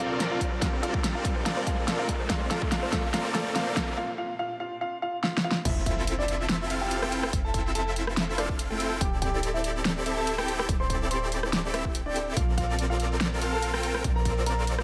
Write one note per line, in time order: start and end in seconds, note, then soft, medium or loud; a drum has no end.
0.00 3.94 A#2 medium
0.00 0.60 C4 medium
0.00 3.94 C4 medium
0.00 3.94 D4 medium
0.00 0.18 F4 medium
0.00 0.60 F4 medium
0.00 0.60 A4 medium
0.00 0.60 A#4 medium
0.00 0.60 D5 loud
0.00 0.18 F5 medium
0.00 riser medium
0.20 0.23 F5 medium
0.20 snare medium
0.20 closed hi-hat medium
0.31 0.50 F4 medium
0.31 0.50 F5 medium
0.31 0.36 A#5 medium
0.41 0.49 A#5 medium
0.41 kick medium
0.41 closed hi-hat medium
0.52 0.57 C5 medium
0.62 1.44 C4 medium
0.62 0.75 F4 medium
0.62 1.44 F4 medium
0.62 1.44 A4 medium
0.62 1.44 A#4 medium
0.62 1.44 D5 loud
0.62 0.75 F5 medium
0.62 0.70 A#5 medium
0.62 kick loud
0.62 snare medium
0.62 closed hi-hat medium
0.73 0.78 C5 medium
0.83 1.02 F4 medium
0.83 0.91 A4 loud
0.83 1.02 F5 medium
0.83 closed hi-hat medium
0.94 kick loud
1.04 1.07 F5 medium
1.04 snare medium
1.04 closed hi-hat medium
1.15 1.34 F4 medium
1.15 1.34 F5 medium
1.15 1.20 A#5 medium
1.25 1.33 A#5 medium
1.25 kick loud
1.25 closed hi-hat medium
1.36 1.41 C5 medium
1.46 2.28 C4 medium
1.46 2.28 F4 medium
1.46 1.59 F4 medium
1.46 2.28 A4 medium
1.46 2.28 A#4 medium
1.46 2.28 D5 loud
1.46 1.59 F5 medium
1.46 1.54 A#5 medium
1.46 snare medium
1.46 closed hi-hat medium
1.57 1.62 C5 medium
1.67 1.86 F4 medium
1.67 1.75 A4 loud
1.67 1.86 F5 medium
1.67 kick loud
1.67 closed hi-hat medium
1.88 1.91 F5 medium
1.88 snare medium
1.88 closed hi-hat medium
1.99 2.18 F4 medium
1.99 2.18 F5 medium
1.99 2.04 A#5 medium
2.09 2.17 A#5 medium
2.09 kick medium
2.09 closed hi-hat medium
2.20 2.25 C5 medium
2.30 2.70 C4 medium
2.30 2.70 F4 medium
2.30 2.43 F4 medium
2.30 2.70 A4 medium
2.30 2.70 A#4 medium
2.30 2.70 D5 loud
2.30 2.43 F5 loud
2.30 2.38 A#5 medium
2.30 kick loud
2.30 snare medium
2.30 closed hi-hat medium
2.41 2.46 C5 medium
2.51 2.70 F4 medium
2.51 2.59 A4 loud
2.51 2.70 F5 medium
2.51 snare medium
2.51 closed hi-hat medium
2.62 kick loud
2.72 3.12 C4 medium
2.72 3.12 F4 medium
2.72 2.85 F4 medium
2.72 3.12 A4 medium
2.72 3.12 A#4 medium
2.72 3.12 D5 loud
2.72 2.85 F5 loud
2.72 2.80 A#5 medium
2.72 snare medium
2.72 closed hi-hat medium
2.83 2.88 C5 medium
2.92 3.12 F4 medium
2.92 3.01 A4 loud
2.92 3.12 F5 loud
2.92 kick loud
2.92 snare medium
2.92 closed hi-hat medium
3.13 3.54 C4 medium
3.13 3.54 F4 medium
3.13 3.27 F4 medium
3.13 3.54 A4 medium
3.13 3.54 A#4 medium
3.13 3.54 D5 loud
3.13 3.27 F5 loud
3.13 3.22 A#5 medium
3.13 snare medium
3.13 closed hi-hat medium
3.25 3.29 C5 medium
3.34 3.54 F4 medium
3.34 3.43 A4 loud
3.34 3.54 F5 medium
3.34 snare medium
3.34 closed hi-hat medium
3.55 3.96 C4 medium
3.55 3.69 F4 medium
3.55 3.96 F4 medium
3.55 3.96 A4 medium
3.55 3.96 A#4 medium
3.55 3.96 D5 loud
3.55 3.69 F5 loud
3.55 3.64 A#5 medium
3.55 snare medium
3.55 closed hi-hat medium
3.67 3.72 C5 medium
3.76 3.96 F4 medium
3.76 3.85 A4 loud
3.76 3.96 F5 medium
3.76 kick medium
3.76 snare medium
3.76 closed hi-hat medium
3.97 4.11 F4 medium
3.97 4.11 F5 loud
4.18 4.32 F4 medium
4.18 4.32 F5 loud
4.39 4.53 F4 medium
4.39 4.53 F5 loud
4.60 4.74 F4 medium
4.60 4.74 F5 loud
4.81 4.95 F4 medium
4.81 4.95 F5 loud
5.02 5.16 F4 medium
5.02 5.16 F5 loud
5.23 5.37 F4 medium
5.23 5.37 F5 loud
5.23 snare medium
5.37 snare medium
5.44 5.58 F4 medium
5.44 5.58 F5 loud
5.51 snare loud
5.65 7.31 F1 medium
5.65 6.68 C4 medium
5.65 6.68 E4 medium
5.65 5.79 E4 medium
5.65 6.68 F4 medium
5.65 6.68 A4 medium
5.65 6.68 E5 loud
5.65 5.79 E5 loud
5.65 kick loud
5.65 closed hi-hat medium
5.65 crash loud
5.65 impact medium
5.86 6.05 E4 medium
5.86 6.05 E5 loud
5.86 kick medium
5.86 closed hi-hat medium
6.07 closed hi-hat medium
6.19 6.37 D4 medium
6.19 6.37 D5 medium
6.28 closed hi-hat medium
6.49 snare loud
6.49 closed hi-hat medium
6.70 7.00 C4 medium
6.70 7.00 E4 medium
6.70 7.00 F4 medium
6.70 7.00 A4 medium
6.70 7.00 F5 medium
6.70 closed hi-hat medium
6.81 7.06 G4 medium
6.81 7.06 G5 medium
6.91 closed hi-hat medium
7.02 7.31 C4 loud
7.02 7.31 E4 medium
7.02 7.31 F4 medium
7.02 7.31 A4 medium
7.02 7.31 G5 loud
7.02 cross-stick medium
7.12 closed hi-hat medium
7.23 cross-stick medium
7.33 8.99 F1 medium
7.33 8.36 C4 medium
7.33 8.36 E4 medium
7.33 8.36 F4 medium
7.33 8.36 A4 medium
7.33 8.36 E5 loud
7.33 kick loud
7.33 closed hi-hat medium
7.45 7.63 A4 medium
7.45 7.63 A5 loud
7.54 kick medium
7.54 closed hi-hat medium
7.75 7.94 A4 medium
7.75 7.94 A5 loud
7.75 closed hi-hat medium
7.96 closed hi-hat medium
8.07 cross-stick medium
8.17 snare loud
8.17 closed hi-hat medium
8.38 8.68 C4 medium
8.38 8.57 D4 medium
8.38 8.68 E4 medium
8.38 8.68 F4 medium
8.38 8.68 A4 medium
8.38 8.57 D5 medium
8.38 8.68 F5 medium
8.38 cross-stick medium
8.38 closed hi-hat medium
8.49 kick medium
8.59 closed hi-hat medium
8.70 8.89 A3 medium
8.70 8.99 C4 loud
8.70 8.99 E4 medium
8.70 8.99 F4 medium
8.70 8.89 A4 medium
8.70 8.99 A4 medium
8.70 8.99 G5 loud
8.80 closed hi-hat medium
9.01 10.67 D1 medium
9.01 10.04 C4 medium
9.01 10.04 E4 medium
9.01 10.04 G4 medium
9.01 9.14 G4 medium
9.01 10.04 A4 medium
9.01 10.04 D5 loud
9.01 9.14 G5 loud
9.01 kick loud
9.01 closed hi-hat medium
9.22 9.41 G4 medium
9.22 9.41 G5 medium
9.22 kick medium
9.22 closed hi-hat medium
9.43 closed hi-hat medium
9.54 9.73 E4 medium
9.54 9.73 E5 medium
9.64 closed hi-hat medium
9.85 snare loud
9.85 closed hi-hat medium
10.06 10.35 C4 medium
10.06 10.35 E4 medium
10.06 10.35 G4 medium
10.06 10.36 A4 medium
10.06 10.36 E5 medium
10.06 closed hi-hat medium
10.17 10.42 A4 medium
10.17 10.42 A5 medium
10.27 closed hi-hat medium
10.38 10.67 C4 loud
10.38 10.67 E4 medium
10.38 10.67 G4 medium
10.38 10.67 A4 medium
10.38 10.67 G5 loud
10.38 cross-stick medium
10.48 closed hi-hat medium
10.59 cross-stick medium
10.69 12.35 D1 medium
10.69 11.72 C4 medium
10.69 11.72 E4 medium
10.69 11.72 G4 medium
10.69 11.72 A4 medium
10.69 11.72 D5 loud
10.69 kick loud
10.69 closed hi-hat medium
10.80 10.99 C5 medium
10.80 10.99 C6 loud
10.90 kick medium
10.90 closed hi-hat medium
11.11 11.30 C5 medium
11.11 11.30 C6 loud
11.11 closed hi-hat medium
11.32 closed hi-hat medium
11.43 cross-stick medium
11.53 snare loud
11.53 closed hi-hat medium
11.73 11.83 C4 medium
11.73 11.93 E4 medium
11.73 11.83 E4 medium
11.73 11.83 G4 medium
11.73 11.83 A4 medium
11.73 11.93 E5 medium
11.73 11.83 E5 loud
11.73 cross-stick medium
11.73 closed hi-hat medium
11.85 12.34 C4 loud
11.85 12.34 E4 medium
11.85 12.34 G4 medium
11.85 12.34 A4 medium
11.85 12.34 G5 loud
11.85 kick medium
11.95 closed hi-hat medium
12.06 12.25 D4 medium
12.06 12.25 D5 medium
12.16 closed hi-hat medium
12.37 14.03 A#1 medium
12.37 13.40 C4 medium
12.37 12.50 F4 medium
12.37 13.40 F4 medium
12.37 13.40 A4 medium
12.37 13.40 A#4 medium
12.37 13.40 D5 loud
12.37 12.50 F5 medium
12.37 kick loud
12.37 closed hi-hat medium
12.57 12.77 F4 medium
12.57 12.77 F5 medium
12.57 kick medium
12.57 closed hi-hat medium
12.79 closed hi-hat medium
12.90 13.09 F4 medium
12.90 13.09 F5 loud
13.00 closed hi-hat medium
13.21 snare loud
13.21 closed hi-hat medium
13.42 13.71 C4 medium
13.42 13.71 F4 medium
13.42 13.71 A4 medium
13.42 13.71 A#4 medium
13.42 13.71 F5 medium
13.42 closed hi-hat medium
13.52 13.78 A4 medium
13.52 13.78 A5 medium
13.62 closed hi-hat medium
13.74 14.02 C4 medium
13.74 14.02 F4 medium
13.74 14.02 A4 medium
13.74 14.02 A#4 medium
13.74 14.02 G5 loud
13.74 cross-stick medium
13.83 closed hi-hat medium
13.95 cross-stick medium
14.04 14.84 A#1 medium
14.04 14.84 C4 loud
14.04 14.84 F4 medium
14.04 14.84 A4 medium
14.04 14.84 A#4 medium
14.04 14.84 D5 loud
14.04 kick loud
14.04 closed hi-hat medium
14.16 14.35 A#4 medium
14.16 14.35 A#5 loud
14.25 kick medium
14.25 closed hi-hat medium
14.46 14.66 A#4 medium
14.46 14.66 A#5 medium
14.46 closed hi-hat medium
14.67 closed hi-hat medium
14.79 cross-stick medium